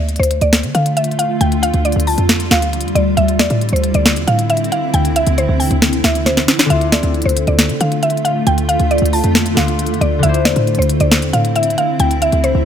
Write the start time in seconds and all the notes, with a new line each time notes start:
Already playing: D2 D3 A3 F4 D5
0.09 closed hi-hat
0.16 D2 C5, closed hi-hat
0.23 closed hi-hat
0.31 closed hi-hat
0.41 D2 D5, closed hi-hat
0.53 snare, closed hi-hat
0.63 D3, closed hi-hat
0.75 D3 F5, closed hi-hat
0.86 closed hi-hat
0.97 E5, closed hi-hat
1.04 closed hi-hat
1.11 closed hi-hat
1.19 F5, closed hi-hat
1.41 D2 G3 G5, closed hi-hat
1.52 closed hi-hat
1.63 F5, closed hi-hat
1.74 D2, closed hi-hat
1.85 D5, closed hi-hat
1.92 D2, closed hi-hat
2.00 closed hi-hat
2.07 A5, open hi-hat
2.18 F2, closed hi-hat
2.29 snare, closed hi-hat
2.40 closed hi-hat
2.51 D2 F5, snare, closed hi-hat
2.62 closed hi-hat
2.73 closed hi-hat
2.81 F2, closed hi-hat
2.88 closed hi-hat
2.95 D2 D5, closed hi-hat
3.17 D2 C4 E4 E5, closed hi-hat
3.28 closed hi-hat
3.39 E2 D5, snare, closed hi-hat
3.50 A2, closed hi-hat
3.61 closed hi-hat
3.69 D2, closed hi-hat
3.73 C5, closed hi-hat
3.84 closed hi-hat
3.94 D2 D5, closed hi-hat
4.06 snare, closed hi-hat
4.16 E2, closed hi-hat
4.27 A2 F5, closed hi-hat
4.39 closed hi-hat
4.50 E5, closed hi-hat
4.57 closed hi-hat
4.64 closed hi-hat
4.72 F5, closed hi-hat
4.94 D2 G5, closed hi-hat
5.05 closed hi-hat
5.16 E5, closed hi-hat
5.27 D2, closed hi-hat
5.38 C5, closed hi-hat
5.49 D2
5.60 G5, open hi-hat
5.71 D2, closed hi-hat
5.82 snare, closed hi-hat
5.93 closed hi-hat
6.04 D2 E5, snare, closed hi-hat
6.15 closed hi-hat
6.26 C5, snare, closed hi-hat
6.37 snare
6.48 snare, closed hi-hat
6.59 snare
6.66 D3 D4
6.70 D2 A3 F4 E5, closed hi-hat
6.75 A4
6.81 closed hi-hat
6.92 D5, snare, closed hi-hat
7.03 D2, closed hi-hat
7.14 closed hi-hat
7.22 D2 C5, closed hi-hat
7.29 closed hi-hat
7.37 closed hi-hat
7.47 D2 D5, closed hi-hat
7.59 snare, closed hi-hat
7.69 D3, closed hi-hat
7.81 D3 F5, closed hi-hat
7.92 closed hi-hat
8.03 E5, closed hi-hat
8.10 closed hi-hat
8.17 closed hi-hat
8.25 F5, closed hi-hat
8.47 D2 G5, closed hi-hat
8.58 closed hi-hat
8.69 F5, closed hi-hat
8.80 D2, closed hi-hat
8.91 D5, closed hi-hat
8.98 D2, closed hi-hat
9.06 closed hi-hat
9.13 A5, open hi-hat
9.24 F2, closed hi-hat
9.35 snare, closed hi-hat
9.46 closed hi-hat
9.54 D2 D3 D4 F4 F5, snare, closed hi-hat
9.59 A4
9.68 closed hi-hat
9.79 closed hi-hat
9.86 F2, closed hi-hat
9.94 closed hi-hat
10.01 D2 D5, closed hi-hat
10.19 D3 D4 E5
10.23 D2 D3 C4 E4, closed hi-hat
10.28 C5
10.34 closed hi-hat
10.45 E2 D5, snare, closed hi-hat
10.56 A2, closed hi-hat
10.67 closed hi-hat
10.75 D2 C5, closed hi-hat
10.82 closed hi-hat
10.89 closed hi-hat
11.00 D2 D5, closed hi-hat
11.12 snare, closed hi-hat
11.22 E2, closed hi-hat
11.33 A2 F5, closed hi-hat
11.45 closed hi-hat
11.56 E5, closed hi-hat
11.63 closed hi-hat
11.70 closed hi-hat
11.78 F5, closed hi-hat
12.00 D2 G5, closed hi-hat
12.11 closed hi-hat
12.22 E5, closed hi-hat
12.32 D2, closed hi-hat
12.44 C5, closed hi-hat
12.55 D2